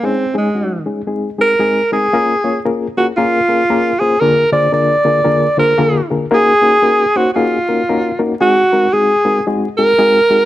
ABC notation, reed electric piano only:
X:1
M:4/4
L:1/8
Q:"Swing" 1/4=115
K:Db
V:1 name="Reed electric piano"
[A,DEA] [A,DEA] [A,DEG] [A,DEA] [A,CEA] [A,CEA] [A,CEA] [A,CEB] | [B,DFAB] [B,DFAd] [B,DFAB] [B,DFAB] [B,DFAB] [B,DFAB] [B,DFAB] [B,DFAc] | [=D,B,=DFAB] [D,B,DFAc] [D,B,DFAB] [D,B,DFAB] [D,B,DFAB] [D,B,DFAc] [D,B,DFAB] [D,B,DFAB] | [B,DEGB] [B,DEGB] [B,DEGB] [B,DEGc] [B,DEGA] [B,DEGB] [B,DEGB] [B,DEGB] |
[A,CEGA] [A,CEGB] [A,CEGA] [A,CEGB] [A,CEGA] [A,CEGA] [A,CEGA] [A,CEGA] |]